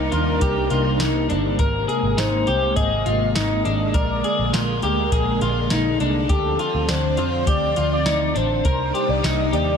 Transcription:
0.00 3.91 C3 medium
0.00 1.57 G3 medium
0.00 6.26 A#3 medium
0.00 1.57 D4 medium
0.00 0.12 D#4 medium
0.00 1.56 D#4 medium
0.00 0.12 A#4 medium
0.12 0.38 D#2 medium
0.12 0.41 F4 medium
0.12 1.26 A#4 medium
0.12 closed hi-hat soft
0.41 0.67 C2 medium
0.41 0.70 G4 medium
0.41 kick medium
0.41 closed hi-hat medium
0.70 0.97 C2 medium
0.70 1.00 F4 medium
0.70 closed hi-hat soft
1.00 1.31 C2 medium
1.00 1.29 D#4 medium
1.00 snare loud
1.00 closed hi-hat medium
1.29 1.56 G1 medium
1.29 1.59 D4 medium
1.29 closed hi-hat soft
1.59 1.85 G#1 medium
1.59 6.25 G#3 medium
1.59 1.88 A#4 medium
1.59 2.20 A#4 medium
1.59 kick loud
1.59 closed hi-hat medium
1.88 2.18 G#4 medium
1.88 closed hi-hat soft
2.03 2.16 G#1 medium
2.17 2.44 G#1 medium
2.17 2.47 D#4 medium
2.17 2.76 C5 medium
2.17 snare medium
2.17 closed hi-hat medium
2.47 2.73 C2 medium
2.47 2.76 G4 medium
2.47 closed hi-hat soft
2.76 3.03 G#1 medium
2.76 3.06 G#4 medium
2.76 3.31 D#5 loud
2.76 kick medium
2.76 closed hi-hat medium
3.06 3.32 G#1 medium
3.06 3.35 F4 medium
3.06 closed hi-hat soft
3.35 3.62 G#1 medium
3.35 3.65 D#4 medium
3.35 3.96 D#5 loud
3.35 snare medium
3.35 closed hi-hat medium
3.65 3.91 G#1 medium
3.65 3.94 D4 medium
3.65 closed hi-hat soft
3.94 4.20 A#1 medium
3.94 8.61 D3 medium
3.94 4.24 A#4 medium
3.94 4.55 D5 loud
3.94 kick loud
3.94 closed hi-hat medium
4.24 4.53 G#4 medium
4.24 closed hi-hat soft
4.39 4.52 A#1 medium
4.53 4.79 A#1 medium
4.53 4.83 F4 medium
4.53 4.82 A#4 medium
4.53 snare medium
4.53 closed hi-hat medium
4.82 5.09 D2 medium
4.82 5.12 G4 medium
4.82 5.96 A#4 medium
4.82 closed hi-hat soft
5.12 5.38 A#1 medium
5.12 5.41 G#4 medium
5.12 kick medium
5.12 closed hi-hat medium
5.41 5.67 A#1 medium
5.41 5.71 F4 medium
5.41 closed hi-hat soft
5.70 5.97 A#1 medium
5.70 6.00 D#4 medium
5.70 snare medium
5.70 closed hi-hat medium
6.00 6.26 C2 medium
6.00 6.30 D4 medium
6.00 closed hi-hat soft
6.29 6.55 D2 medium
6.29 8.62 F3 medium
6.29 8.62 C4 medium
6.29 6.59 G4 medium
6.29 6.91 A4 medium
6.29 kick loud
6.29 closed hi-hat medium
6.59 6.89 F4 medium
6.59 closed hi-hat soft
6.74 6.87 D2 medium
6.89 7.18 D2 medium
6.89 7.18 D4 medium
6.89 7.48 C5 medium
6.89 snare medium
6.89 closed hi-hat medium
7.17 7.44 F2 medium
7.17 7.47 F4 medium
7.17 closed hi-hat soft
7.47 7.73 D2 loud
7.47 7.76 G4 medium
7.47 7.89 D5 loud
7.47 kick medium
7.47 closed hi-hat medium
7.76 8.03 D2 medium
7.76 8.06 F4 medium
7.76 closed hi-hat soft
7.93 8.38 D5 medium
8.06 8.32 D2 medium
8.06 8.35 D#4 medium
8.06 snare medium
8.06 closed hi-hat medium
8.35 8.62 A1 medium
8.35 8.65 D4 medium
8.35 8.65 C5 medium
8.35 closed hi-hat soft
8.64 8.91 C2 medium
8.64 9.77 C3 medium
8.64 9.77 G3 medium
8.64 9.77 A#3 medium
8.64 9.77 D4 medium
8.64 9.77 D#4 medium
8.64 8.94 A#4 medium
8.64 9.11 C5 loud
8.64 kick loud
8.64 closed hi-hat medium
8.94 9.24 G4 medium
8.94 closed hi-hat soft
9.09 9.22 C2 medium
9.09 9.26 D5 loud
9.23 9.50 C2 medium
9.23 9.53 D#4 medium
9.23 9.55 D#5 loud
9.23 snare medium
9.23 closed hi-hat medium
9.53 9.77 D#2 medium
9.53 9.77 G4 medium
9.53 9.77 D5 medium
9.53 closed hi-hat soft

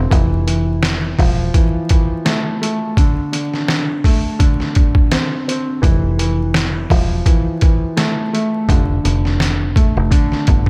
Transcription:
0.00 0.13 D3 medium
0.00 0.11 A3 medium
0.00 0.13 C4 medium
0.10 1.15 F1 loud
0.10 0.46 E3 medium
0.10 kick loud
0.10 closed hi-hat medium
0.47 1.53 E3 medium
0.47 closed hi-hat medium
0.83 snare loud
0.83 closed hi-hat medium
1.19 1.49 E1 medium
1.19 2.97 F3 medium
1.19 kick loud
1.19 open hi-hat medium
1.54 1.89 E3 medium
1.54 kick medium
1.54 closed hi-hat medium
1.89 2.97 E3 medium
1.89 kick loud
1.89 closed hi-hat medium
2.25 2.60 A3 medium
2.25 snare loud
2.25 closed hi-hat medium
2.61 2.97 A3 medium
2.61 closed hi-hat medium
2.97 3.31 D3 medium
2.97 kick loud
2.97 closed hi-hat loud
3.32 4.38 D3 medium
3.32 closed hi-hat medium
3.54 snare soft
3.68 snare loud
3.68 closed hi-hat medium
4.04 5.83 A3 medium
4.04 kick medium
4.04 open hi-hat medium
4.39 4.76 D3 medium
4.39 kick loud
4.39 closed hi-hat medium
4.60 snare soft
4.75 5.84 D3 medium
4.75 kick medium
4.75 closed hi-hat medium
4.95 kick loud
5.11 5.47 C4 medium
5.11 snare loud
5.11 closed hi-hat medium
5.48 5.83 C4 medium
5.48 closed hi-hat medium
5.82 6.86 F1 loud
5.82 6.17 E3 medium
5.82 kick loud
5.82 closed hi-hat medium
6.19 7.25 E3 medium
6.19 closed hi-hat medium
6.54 snare loud
6.54 closed hi-hat medium
6.90 7.20 E1 medium
6.90 8.69 F3 medium
6.90 kick medium
6.90 open hi-hat medium
7.26 7.61 E3 medium
7.26 kick loud
7.26 closed hi-hat medium
7.61 8.69 E3 medium
7.61 kick loud
7.61 closed hi-hat medium
7.97 8.32 A3 medium
7.97 snare loud
7.97 closed hi-hat medium
8.33 8.69 A3 medium
8.33 closed hi-hat medium
8.69 8.99 F1 loud
8.69 9.02 D3 medium
8.69 kick loud
8.69 closed hi-hat loud
9.04 9.93 F1 medium
9.04 10.09 D3 medium
9.04 closed hi-hat medium
9.25 snare soft
9.40 snare loud
9.40 closed hi-hat medium
9.76 10.70 A3 medium
9.76 kick medium
9.76 closed hi-hat medium
9.97 10.09 F1 medium
10.11 10.47 D3 loud
10.11 kick loud
10.11 closed hi-hat medium
10.32 muted fingered electric bass stroke soft
10.32 snare soft
10.47 10.70 G1 medium
10.47 10.70 D3 medium
10.47 kick medium
10.47 closed hi-hat medium
10.66 kick medium

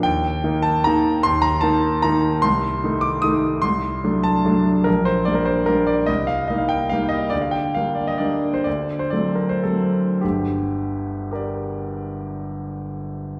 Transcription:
0.03 0.43 D#2 medium
0.03 0.63 G5 medium
0.44 0.81 D#3 soft
0.44 0.81 A#3 soft
0.44 0.81 D#4 soft
0.62 0.84 A5 medium
0.84 1.21 D#3 soft
0.84 1.21 A#3 soft
0.84 1.21 D#4 soft
0.84 1.24 A#5 medium
1.23 1.62 D#2 medium
1.23 1.43 C6 loud
1.42 1.62 A#5 medium
1.61 2.00 D#3 soft
1.61 2.00 A#3 soft
1.61 2.00 D#4 soft
1.61 2.03 A5 medium
2.02 2.40 D#3 soft
2.02 2.40 A#3 soft
2.02 2.40 D#4 soft
2.02 2.43 A#5 medium
2.42 2.82 C2 medium
2.42 3.02 C6 medium
2.84 3.20 D#3 soft
2.84 3.20 A3 soft
2.84 3.20 D#4 soft
3.01 3.22 D6 medium
3.22 3.60 D#3 soft
3.22 3.60 A3 soft
3.22 3.60 D#4 soft
3.22 3.63 D#6 medium
3.62 4.02 C2 soft
3.62 4.23 C6 medium
4.04 4.41 F#3 soft
4.04 4.42 A3 soft
4.04 4.42 D4 soft
4.24 4.87 A5 medium
4.45 4.83 F#3 soft
4.45 4.83 A3 soft
4.45 4.83 D4 soft
4.84 5.25 A#1 soft
4.84 5.05 A#4 medium
5.05 5.26 C5 medium
5.25 5.64 G3 soft
5.25 5.64 A#3 soft
5.25 5.64 D4 soft
5.25 5.36 D5 medium
5.35 5.46 A#4 medium
5.45 5.67 C5 medium
5.66 6.05 G3 soft
5.66 6.04 A#3 soft
5.66 6.05 D4 soft
5.66 5.87 A#4 medium
5.87 6.07 D5 medium
6.06 6.47 C2 soft
6.06 6.27 D#5 medium
6.27 6.48 F5 medium
6.48 6.86 G3 soft
6.48 6.87 A#3 soft
6.48 6.87 D#4 soft
6.48 6.58 D#5 medium
6.58 6.69 F5 medium
6.69 6.90 G5 medium
6.89 7.28 G3 soft
6.89 7.29 A#3 soft
6.89 7.29 D#4 soft
6.89 7.11 F5 medium
7.09 7.31 D#5 medium
7.30 7.73 D2 soft
7.30 7.41 D5 medium
7.41 7.52 F5 medium
7.51 7.74 G5 medium
7.75 8.17 G3 soft
7.75 8.17 A#3 soft
7.75 8.17 D4 soft
7.75 7.97 F5 medium
7.95 8.07 D5 soft
8.07 8.19 D#5 medium
8.18 8.62 G3 soft
8.18 8.62 A#3 soft
8.18 8.62 D4 soft
8.18 8.54 D5 medium
8.54 8.65 C5 medium
8.64 9.11 D2 soft
8.64 8.99 D5 medium
8.99 9.12 C5 medium
9.10 9.60 F#3 soft
9.10 9.60 A3 soft
9.10 9.61 C4 soft
9.10 9.36 D5 medium
9.35 9.49 A#4 soft
9.49 9.64 C5 medium
9.63 10.19 F#3 soft
9.63 10.19 A3 soft
9.63 10.19 C4 soft
9.63 10.22 A4 soft
10.21 13.40 G1 soft
10.21 13.40 D2 soft
10.21 11.30 G4 soft
11.31 13.40 G4 soft
11.31 13.40 A#4 soft
11.31 13.40 D5 soft

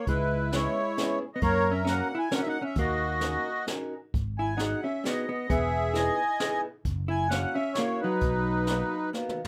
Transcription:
0.07 0.66 C#2 medium
0.07 0.50 G#3 medium
0.07 0.52 E4 medium
0.07 0.54 B4 medium
0.07 kick medium
0.07 closed hi-hat soft
0.52 1.19 G#3 medium
0.52 0.77 B3 soft
0.52 0.77 C#4 soft
0.52 1.18 E4 medium
0.52 0.77 E4 soft
0.52 0.77 G#4 soft
0.52 1.19 C#5 medium
0.52 snare medium
0.52 closed hi-hat soft
0.97 1.22 B3 medium
0.97 1.22 C#4 medium
0.97 1.22 E4 medium
0.97 1.22 G#4 medium
0.97 snare medium
0.97 closed hi-hat soft
1.34 1.42 B3 medium
1.34 1.41 D#5 medium
1.42 2.01 F#2 loud
1.42 1.70 A#3 medium
1.42 2.08 A#4 medium
1.42 1.73 C#5 loud
1.42 kick medium
1.42 closed hi-hat soft
1.71 1.84 C#4 medium
1.71 1.87 E5 medium
1.85 2.11 A#3 medium
1.85 2.14 C#4 medium
1.85 2.11 C#4 soft
1.85 2.11 F#4 soft
1.85 2.11 A#4 medium
1.85 2.19 F#5 medium
1.85 snare medium
1.85 closed hi-hat soft
2.15 2.30 E4 medium
2.15 2.33 G#5 medium
2.31 2.56 A#3 medium
2.31 2.56 C#4 medium
2.31 2.37 C#4 medium
2.31 2.56 F#4 medium
2.31 2.56 A#4 medium
2.31 2.41 F#5 loud
2.31 snare medium
2.31 closed hi-hat soft
2.38 2.46 C#4 medium
2.42 2.48 E5 medium
2.47 2.61 D#4 medium
2.47 2.63 F#5 loud
2.62 2.76 C#4 medium
2.62 2.79 E5 medium
2.75 3.36 D#2 loud
2.75 3.65 A#3 medium
2.75 3.65 F#4 medium
2.75 kick medium
2.75 closed hi-hat soft
2.80 3.66 D#5 medium
3.21 3.47 C#4 soft
3.21 3.47 D#4 soft
3.21 3.47 F#4 soft
3.21 3.47 A#4 medium
3.21 snare medium
3.21 closed hi-hat medium
3.67 3.93 C#4 medium
3.67 3.93 D#4 medium
3.67 3.93 F#4 medium
3.67 3.93 A#4 medium
3.67 snare medium
3.67 closed hi-hat soft
4.14 4.73 G#1 medium
4.14 kick medium
4.14 closed hi-hat soft
4.38 4.57 E4 medium
4.38 4.60 G#5 medium
4.57 4.85 B3 soft
4.57 4.82 D#4 medium
4.57 4.84 D#4 soft
4.57 4.84 F#4 soft
4.57 4.84 G#4 medium
4.57 4.84 F#5 medium
4.57 snare medium
4.57 closed hi-hat soft
4.83 5.03 C#4 medium
4.83 5.05 E5 medium
5.04 5.29 B3 soft
5.04 5.28 B3 medium
5.04 5.29 D#4 soft
5.04 5.29 F#4 medium
5.04 5.29 G#4 medium
5.04 5.29 D#5 medium
5.04 snare medium
5.04 closed hi-hat soft
5.29 5.48 B3 medium
5.29 5.51 D#5 medium
5.50 6.08 E1 loud
5.50 5.92 B3 medium
5.50 6.15 G#4 medium
5.50 5.97 E5 medium
5.50 kick medium
5.50 closed hi-hat soft
5.94 6.19 B3 medium
5.94 6.19 D#4 soft
5.94 6.60 E4 medium
5.94 6.19 E4 soft
5.94 6.19 G#4 medium
5.94 6.61 D#5 medium
5.94 6.61 G#5 medium
5.94 snare medium
5.94 closed hi-hat soft
6.40 6.65 B3 medium
6.40 6.65 D#4 medium
6.40 6.65 E4 medium
6.40 6.65 G#4 medium
6.40 snare medium
6.40 closed hi-hat soft
6.85 7.44 F#1 loud
6.85 kick medium
6.85 closed hi-hat soft
7.08 7.28 E4 medium
7.08 7.29 G#5 medium
7.29 7.55 A#3 medium
7.29 7.55 C#4 medium
7.29 7.54 C#4 medium
7.29 7.56 E4 soft
7.29 7.55 F#4 medium
7.29 7.55 F#5 medium
7.29 snare medium
7.29 closed hi-hat medium
7.54 7.75 C#4 medium
7.54 7.76 E5 medium
7.74 8.01 A#3 medium
7.74 8.00 C#4 soft
7.74 8.01 E4 medium
7.74 8.01 F#4 medium
7.74 8.01 C#5 medium
7.74 snare medium
7.74 closed hi-hat soft
7.78 8.00 A#3 medium
8.01 9.12 F#3 medium
8.01 9.10 D#4 medium
8.01 9.10 B4 medium
8.21 8.82 B1 medium
8.21 kick medium
8.21 closed hi-hat soft
8.67 8.93 A#3 soft
8.67 8.93 B3 soft
8.67 8.93 D#4 soft
8.67 8.93 F#4 medium
8.67 snare medium
8.67 closed hi-hat medium
9.13 9.39 A#3 medium
9.13 9.39 B3 medium
9.13 9.39 D#4 medium
9.13 9.40 F#4 medium
9.13 snare soft
9.29 mid tom soft
9.45 floor tom medium

